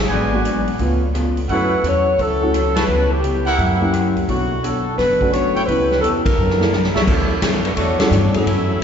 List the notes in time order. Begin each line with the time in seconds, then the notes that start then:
0.00 G#4
0.09 G#1 G#2 F#3 B3 D4 F#4 B4 D5 G#5
0.32 A#3 B3 D4 F#4
0.45 G#2 F#3 B3 D4, closed hi-hat
0.67 G#2, open hi-hat
0.79 C#2 C#3 A3 B3 F4 A4 B4, kick, open hi-hat
1.14 C#3 B3 F4 A4, cross-stick, closed hi-hat
1.37 open hi-hat
1.48 F#2 F#3 A3 C#4 E4 F#4 A4 C#5 F#5, kick, open hi-hat
1.53 B4
1.83 E2 F#3 C#4 E4 A4, closed hi-hat
1.88 C#5
2.19 C#2 F#3 C#4 E4 A4, kick, open hi-hat
2.41 A3 C#4 E4 F#4
2.54 F#3 C#4 E4 A4, cross-stick, closed hi-hat
2.75 E4 B4 C#5 A5, snare, ride
2.88 C#2 C#3 B3 E4 G4
3.12 G4
3.23 C#3 B3 E4 G4, closed hi-hat
3.46 E4 G4 A#4 F#5, open hi-hat
3.58 F#2 F#3 A#3 E4 G4, kick, open hi-hat
3.80 A#3 C#4 E4 G4
3.93 F#3 A#3 E4 G4, cross-stick, closed hi-hat
4.15 C#2, open hi-hat
4.28 B1 B3 D4 F#4 A4 C#5, kick, open hi-hat
4.63 B3 D4 A4 C#5, closed hi-hat
4.97 F#1 B3 D4 A4 B4 C#5, kick, snare, open hi-hat
5.21 A3 C#4 D4 F#4, kick
5.32 B3 D4 A4 C#5, cross-stick, closed hi-hat
5.55 E4 B4 C#5 G5, open hi-hat
5.66 C#2 C#3 B3 C#4 E4 G4 B4, kick, open hi-hat
5.91 snare
6.01 F2 C#3 B3 E4 A4, closed hi-hat
6.05 G4
6.24 A#4, kick, ride
6.38 F#2 F#3 D4 E4 A#4
6.50 snare
6.59 A#3 D4 E4 A4, snare
6.72 F#3 D4 E4 A#4, snare
6.84 snare
6.95 C2 D4 A4 C#5 E5, snare
7.06 D2 B2 E3 F#3 A3 C#4 D4 A4, kick, crash
7.42 F#2 B2 E3 A3 D4, kick, snare, hi-hat pedal, ride
7.65 A3 D4 F#4 B4, ride
7.76 E2 B2 E3 A3 D4 F#4 C#5, kick, ride
7.99 F#3 C#4 D4 E4 F#4 A4, snare, ride
8.11 G2 B2 E3 A3 D4, hi-hat pedal
8.34 F#3 A3 C#4 E4 F#4 G#4 A4, muted upright bass stroke, ride
8.46 F#2 E3 A3 C#4, kick, ride